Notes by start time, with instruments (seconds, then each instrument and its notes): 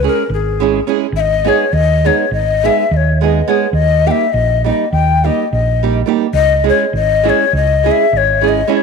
0.03 nylon-string guitar G#3 C#4 E4 G#4
0.07 ney A#4
0.30 fingered electric bass G#1
0.34 ney G#4
0.60 nylon-string guitar G#3 C#4 E4 G#4
0.87 nylon-string guitar G#3 C#4 E4 G#4
1.12 fingered electric bass G#1, ney E5
1.20 ney D#5
1.44 nylon-string guitar G#3 B3 D#4 G#4
1.49 ney C#5
1.73 fingered electric bass D#2, ney D#5
2.04 nylon-string guitar G#3 B3 D#4 G#4, ney C#5
2.31 fingered electric bass G#1, ney D#5
2.64 nylon-string guitar G#3 B3 D#4 G#4, ney E5
2.91 fingered electric bass D#2, ney D#5
2.97 ney C#5
3.21 nylon-string guitar G#3 B3 D#4 G#4, ney D#5
3.48 nylon-string guitar G#3 B3 D#4 G#4, ney C#5
3.73 fingered electric bass D#2, ney D#5
4.06 nylon-string guitar G3 A#3 D#4 G4, ney G5
4.11 ney E5
4.33 fingered electric bass A#1, ney D#5
4.64 nylon-string guitar G3 A#3 D#4 G4, ney D#5
4.92 fingered electric bass D#2, ney G5
5.24 nylon-string guitar G3 A#3 D#4 G4, ney D#5
5.53 fingered electric bass A#1, ney D#5
5.83 nylon-string guitar G3 A#3 D#4 G4
6.06 nylon-string guitar G3 A#3 D#4 G4
6.33 fingered electric bass C#2, ney D#5
6.64 nylon-string guitar G#3 C#4 E4 G#4
6.69 ney C#5
6.93 fingered electric bass G#1, ney D#5
7.23 nylon-string guitar G#3 C#4 E4 G#4
7.29 ney C#5
7.53 fingered electric bass C#2, ney D#5
7.84 nylon-string guitar G#3 C#4 E4 G#4
7.91 ney E5
8.13 fingered electric bass G#1
8.17 ney C#5
8.41 nylon-string guitar G#3 C#4 E4 G#4
8.48 ney D#5
8.67 nylon-string guitar G#3 C#4 E4 G#4
8.73 ney C#5 D#5